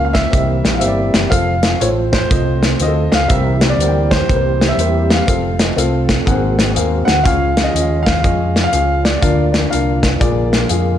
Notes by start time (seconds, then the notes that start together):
Already playing: C#2 A#2 F3 A#3 C#4 F4 A#4 F5
0.05 F5
0.13 E5, kick, snare, closed hi-hat
0.31 C2 C3 E3 G3 C4 E4 G4 A#4 D#5, kick, closed hi-hat
0.38 E5
0.65 A#1, snare, closed hi-hat
0.75 F5
0.79 G1 C4 G4 A#4 C5 E5, closed hi-hat
0.88 D5
1.14 F#1, snare, closed hi-hat
1.30 F1 F3 A3 C4 F4 A4 F5, kick, closed hi-hat
1.63 C4 F4 A4 F5, snare, closed hi-hat
1.80 A1 C4 F4 A4 C5 C#5, closed hi-hat
2.13 C5, kick, snare, closed hi-hat
2.30 C2 C4 F4 A4 D#5, kick, closed hi-hat
2.63 snare, closed hi-hat
2.80 D2 C4 F4 F#4 D#5, closed hi-hat
2.88 A4
3.12 C#2 F5, snare, closed hi-hat
3.28 C2 C3 E3 G3 A#3 C4 E4 G4 A#4 E5, kick, closed hi-hat
3.61 C4 G4 A#4 E5, snare, closed hi-hat
3.70 D5
3.77 D2 C4 G4, closed hi-hat
3.82 A#4 F#5
3.88 G5
4.11 C5, kick, snare, closed hi-hat
4.29 C2 C4 G4 A#4 B4, kick, closed hi-hat
4.36 C5
4.61 snare, closed hi-hat
4.69 E5
4.77 E2 C4 G4 A#4 C5, closed hi-hat
5.10 F5, snare, closed hi-hat
5.27 F1 F3 A3 C4 F4 A4 F5, kick, closed hi-hat
5.59 C4 F4 A4 D#5, snare, closed hi-hat
5.76 C2 C4 F4 A4 F5, closed hi-hat
6.09 kick, snare, closed hi-hat
6.25 G#1 G#2 D#3 G#3 A#3 F#4 G#4 A#4 F#5, kick, closed hi-hat
6.32 C4
6.59 snare, closed hi-hat
6.75 D#2 C4 G#4 A#4 F5, closed hi-hat
7.05 D2 F#5, snare, closed hi-hat
7.23 C#2 C#3 F3 C#4 F4 G#4 F5, kick, closed hi-hat
7.56 C#4 F4 G#4 F5, snare, closed hi-hat
7.64 D#5
7.74 D#2 C#4 F4 G#4 D#5, closed hi-hat
7.82 F5
8.03 F5, kick
8.07 snare, closed hi-hat
8.24 F2 C#4 F4 G#4 D#5, kick, closed hi-hat
8.56 snare, closed hi-hat
8.64 F5
8.72 C#2 C#4 F4 G#4 F5, closed hi-hat
9.05 D5, snare, closed hi-hat
9.21 D2 D3 A#3 D4 F4 A#4 F5, kick, closed hi-hat
9.52 D4 F4 A#4 D5, snare, closed hi-hat
9.70 C2 D4 F4 A#4 F5, closed hi-hat
10.03 kick, snare, closed hi-hat
10.20 A#1 A#2 D3 F3 G#3 A#3 F4 G#4 D5, kick, closed hi-hat
10.53 snare, closed hi-hat
10.69 F2 A#3 F4 G#4 F5, closed hi-hat